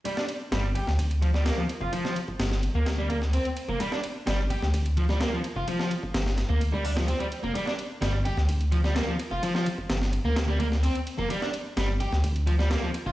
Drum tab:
RD |x-x-x-x-xxx-x-x-|x-x-x-x-x-x-xxx-|x-x-x-x-xxx-x-x-|x-x-x-x-x---xxx-|
HH |----------------|----------------|----------------|----------o-----|
SD |-o--o--o---oo---|-o--oo--o--o----|-o--o--o---oo---|-o--ooo----o----|
BD |o-----o-o------o|o--o------o----o|o-----o-o------o|o--o-----o-----o|

RD |x-x-x-x-xxx-x-x-|x-x-x-x-x-x-xxx-|x-x-x-x-xxx-x-x-|
HH |----------------|----------------|----------------|
SD |-o--o--o---oo---|-o--oo--o--o----|-o--o--o---oo---|
BD |o-----o-o------o|o--o------o----o|o-----o-o------o|